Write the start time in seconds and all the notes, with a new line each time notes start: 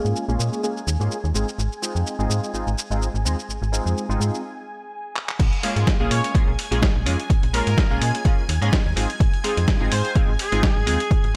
Already playing: G#3 A#3 C#4 F4 G#4 G#5 G#6
0.05 G#2, shaker
0.16 shaker
0.28 A#1 G#3 A#3 C#4 F4 G#4, shaker
0.39 A#2, shaker
0.53 shaker
0.63 G#3 A#3 C#4 F4 G#4, shaker
0.77 shaker
0.87 D#2, shaker
1.00 G#2 G#3 A#3 C#4 F4 G#4, shaker
1.11 shaker
1.24 D#2, shaker
1.34 G#1 G#3 C4 D#4 F4 G#4, shaker
1.49 shaker
1.58 G#1, shaker
1.72 shaker
1.82 G#3 C4 D#4 F4 G#4, shaker
1.95 F2, shaker
2.07 shaker
2.19 G#1 G#3 C4 D#4 F4 G#4, shaker
2.30 G#2, shaker
2.44 shaker
2.54 G#1 G#3 C4 D#4 F4 G#4, shaker
2.67 G#1, shaker
2.78 shaker
2.91 G#1 G#3 C4 D#4 F4 G#4, shaker
3.02 shaker
3.14 G#1, shaker
3.25 D#2 G#3 C4 D#4 F4 G#4, shaker
3.39 shaker
3.49 G#1, shaker
3.62 G#1, shaker
3.72 G#3 C4 D#4 F4 G#4, shaker
3.86 F2, shaker
3.98 shaker
4.09 G#1 G#3 C4 D#4 F4 G#4, shaker
4.20 G#2, shaker
4.35 shaker
5.16 clap
5.29 clap
5.39 A#1 G#5 G#6, kick, closed hi-hat, crash
5.53 closed hi-hat
5.63 G#3 A#3 C#4 F4 G#4, open hi-hat
5.76 G#2, closed hi-hat
5.87 kick, snare, closed hi-hat
6.00 A#1 G#3 A#3 C#4 F4 G#4
6.11 A#2 C#5, open hi-hat
6.24 closed hi-hat
6.34 A#1 G#3 A#3 C#4 F4 G#4, kick, closed hi-hat
6.48 A#1
6.59 open hi-hat
6.71 A#1 G#3 A#3 C#4 F4 G#4, closed hi-hat
6.82 kick, snare, closed hi-hat
6.95 A#1
7.06 F2 G#3 A#3 C#4 F4 G#4, open hi-hat
7.20 closed hi-hat
7.30 A#1, kick, closed hi-hat
7.43 A#1, closed hi-hat
7.53 G#3 A#3 C#4 F4 G#4 A#4, open hi-hat
7.67 G#2, closed hi-hat
7.78 kick, snare, closed hi-hat
7.90 A#1 G#3 A#3 C#4 F4 G#4
8.01 A#2, open hi-hat
8.15 closed hi-hat
8.25 G#3 A#3 C#4 F4 G#4, kick, closed hi-hat
8.49 D#2, open hi-hat
8.62 G#2 G#3 A#3 C#4 F4 G#4, closed hi-hat
8.73 kick, snare, closed hi-hat
8.86 D#2
8.96 G#1 G#3 C4 D#4 F4 G#4, open hi-hat
9.10 closed hi-hat
9.20 G#1, kick, closed hi-hat
9.34 closed hi-hat
9.44 G#3 C4 D#4 F4 G#4, open hi-hat
9.57 F2, closed hi-hat
9.68 kick, snare, closed hi-hat
9.80 G#1 G#3 C4 D#4 F4 G#4
9.92 G#2 C5, open hi-hat
10.05 closed hi-hat
10.15 G#1 G#3 C4 D#4 F4 G#4, kick, closed hi-hat
10.29 G#1
10.39 G#4, open hi-hat
10.52 G#1 G#3 C4 D#4 F4 G#4, closed hi-hat
10.63 G#4, kick, snare, closed hi-hat
10.76 G#1
10.86 D#2 G#3 C4 D#4 F4 G#4, open hi-hat
11.00 closed hi-hat
11.11 G#1, kick, closed hi-hat
11.24 G#1, closed hi-hat